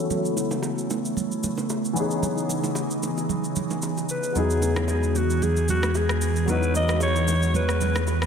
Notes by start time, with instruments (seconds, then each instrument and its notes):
Already playing: ambient pad C#3 A3 B3 E4, grand piano F#3 B3 C#4 E4 A4
0.10 low conga, shaker
0.25 shaker
0.37 low bongo, shaker
0.51 low bongo, shaker
0.62 high bongo, shaker
0.78 shaker
0.90 low bongo, shaker
1.05 shaker
1.17 low conga, shaker
1.32 shaker
1.43 low conga, shaker
1.57 low bongo, shaker
1.69 high bongo, shaker
1.85 shaker
1.93 ambient pad C#3 E3 D#4, grand piano E3 B3 C#4, shaker
1.98 grand piano D#4 G#4
2.11 shaker
2.23 low conga, shaker
2.38 shaker
2.49 low bongo, shaker
2.64 low bongo, shaker
2.75 high bongo, shaker
2.91 shaker
3.03 low bongo, shaker
3.18 high bongo, shaker
3.29 low conga, shaker
3.44 shaker
3.56 low conga, shaker
3.70 low bongo, shaker
3.82 high bongo, shaker
3.97 high bongo, shaker
4.09 alto saxophone B4, shaker
4.23 shaker
4.32 sub bass E2, ambient pad E3 G#3 B3 G#4, grand piano F#3 B3 D#4, low conga, shaker
4.37 grand piano E4 G#4, alto saxophone G#4
4.50 shaker
4.62 low bongo, shaker
4.76 cross-stick, low bongo, shaker
4.88 alto saxophone G#4, high bongo, shaker
5.03 shaker
5.15 alto saxophone F#4, low bongo, shaker
5.30 shaker
5.42 alto saxophone G#4, low conga, shaker
5.56 shaker
5.68 alto saxophone F#4, low conga, shaker
5.83 cross-stick, low bongo, shaker
5.95 alto saxophone G#4, high bongo, shaker
6.09 cross-stick, shaker
6.21 shaker
6.36 shaker
6.45 grand piano F#3 B3 D#4, low conga, shaker
6.50 grand piano E4 F#4, alto saxophone B4
6.63 shaker
6.74 alto saxophone D#5, low bongo, shaker
6.88 cross-stick, low bongo, shaker
7.00 alto saxophone C#5, high bongo, shaker
7.16 shaker
7.28 low bongo, shaker
7.42 shaker
7.54 alto saxophone B4, low conga, shaker
7.69 cross-stick, shaker
7.81 low conga, shaker
7.95 cross-stick, low bongo, shaker
8.07 high bongo, shaker
8.22 cross-stick, shaker